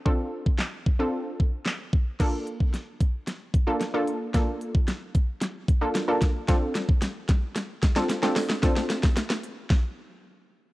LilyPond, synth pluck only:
\new Staff \with { instrumentName = "Synth pluck" } { \time 4/4 \key bes \lydian \tempo 4 = 112 <c' d' f' a'>8. r4 <c' d' f' a'>4 r4 r16 | <bes d' f' a'>4 r4. r16 <bes d' f' a'>16 r16 <bes d' f' a'>16 r8 | <bes d' f' a'>4 r4. r16 <bes d' f' a'>16 r16 <bes d' f' a'>16 r8 | <c' d' f' a'>4 r4. r16 <c' d' f' a'>16 r16 <c' d' f' a'>16 r8 |
<c' d' f' a'>4 r2. | }